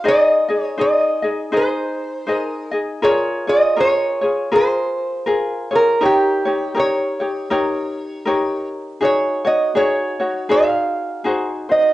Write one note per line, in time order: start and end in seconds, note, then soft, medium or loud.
0.04 0.49 D#4 medium
0.04 0.48 G#4 medium
0.04 0.48 C5 medium
0.04 0.47 D#5 medium
0.08 0.63 D#5 medium
0.48 0.77 D#4 soft
0.48 0.78 G#4 soft
0.48 0.78 D#5 soft
0.63 0.80 C#5 medium
0.78 1.23 D#4 medium
0.78 1.22 G#4 medium
0.78 1.22 C5 soft
0.78 1.21 D#5 medium
0.78 1.56 D#5 medium
1.22 1.51 D#4 soft
1.22 1.52 G#4 soft
1.22 1.53 D#5 soft
1.52 2.26 D#4 medium
1.52 2.28 G#4 medium
1.52 2.26 C5 medium
1.52 2.28 D#5 medium
1.57 2.35 C5 medium
2.27 2.72 D#4 medium
2.27 2.71 G#4 medium
2.27 2.72 C5 medium
2.27 2.70 D#5 medium
2.35 2.70 A#4 medium
2.71 3.02 D#4 soft
2.71 3.02 G#4 soft
2.71 3.02 D#5 soft
3.02 3.47 F4 medium
3.02 3.47 G#4 medium
3.02 3.47 A#4 medium
3.02 3.46 C#5 medium
3.02 3.49 C#5 medium
3.47 3.76 F4 soft
3.47 3.77 G#4 soft
3.47 3.77 C#5 soft
3.47 3.79 D#5 medium
3.77 4.22 F4 medium
3.77 4.21 G#4 medium
3.77 4.21 A#4 medium
3.77 4.20 C#5 medium
3.77 4.49 C#5 medium
4.21 4.51 F4 soft
4.21 4.51 G#4 soft
4.21 4.51 C#5 soft
4.51 5.25 F4 medium
4.51 5.26 G#4 medium
4.51 5.26 A#4 medium
4.56 5.75 C5 medium
5.26 5.71 F4 medium
5.26 5.71 G#4 medium
5.26 5.70 A#4 medium
5.71 6.00 F4 soft
5.71 6.01 G#4 soft
5.71 6.01 C#5 soft
5.75 6.04 A#4 medium
6.01 6.46 D#4 medium
6.01 6.45 G4 medium
6.01 6.45 A#4 medium
6.01 6.44 C#5 medium
6.05 6.80 G4 medium
6.45 6.74 D#4 soft
6.45 6.75 G4 soft
6.45 6.75 C#5 soft
6.75 7.20 D#4 medium
6.75 7.20 G4 medium
6.75 7.20 A#4 medium
6.75 7.19 C#5 medium
6.80 8.68 C#5 medium
7.20 7.50 D#4 soft
7.20 7.50 G4 soft
7.20 7.50 C#5 soft
7.50 8.26 D#4 medium
7.50 8.26 G4 medium
7.50 8.24 A#4 medium
7.50 8.27 C#5 medium
8.25 9.01 D#4 medium
8.25 9.01 G4 medium
8.25 9.00 A#4 medium
8.25 9.01 C#5 medium
9.01 9.45 D#4 medium
9.01 9.44 F#4 medium
9.01 9.45 G#4 medium
9.01 9.43 C#5 medium
9.05 9.47 C#5 medium
9.45 9.74 D#4 soft
9.45 9.75 F#4 soft
9.45 9.75 C#5 soft
9.45 9.74 D#5 medium
9.75 10.20 D#4 medium
9.75 10.19 F#4 medium
9.75 10.19 G#4 medium
9.75 10.18 C#5 medium
9.75 10.53 C#5 medium
10.19 10.48 D#4 soft
10.19 10.49 F#4 soft
10.19 10.49 C#5 soft
10.49 11.24 D#4 medium
10.49 11.24 F#4 medium
10.49 11.24 G#4 medium
10.49 11.26 C5 medium
10.49 11.21 F5 medium
11.24 11.69 D#4 medium
11.24 11.69 F#4 medium
11.24 11.69 G#4 medium
11.24 11.68 C5 medium
11.69 11.93 D#4 soft
11.69 11.93 F#4 soft
11.69 11.93 C5 soft
11.69 11.93 D#5 medium